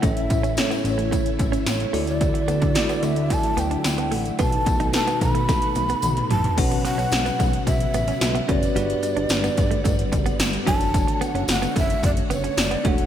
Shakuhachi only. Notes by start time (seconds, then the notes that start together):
0.05 E5
0.59 C#5
0.87 D5
0.91 C#5
1.68 C#5
2.08 D5
3.05 E5
3.33 A5
3.59 G5
4.14 F#5
4.41 A5
4.95 A5
5.23 B5
6.31 A5
6.59 F#5
6.86 F#5
7.67 E5
8.49 D5
10.68 A5
11.23 F#5 G5
11.51 F#5
11.78 E5
12.05 D5
12.33 C#5
12.60 D5
12.87 F#5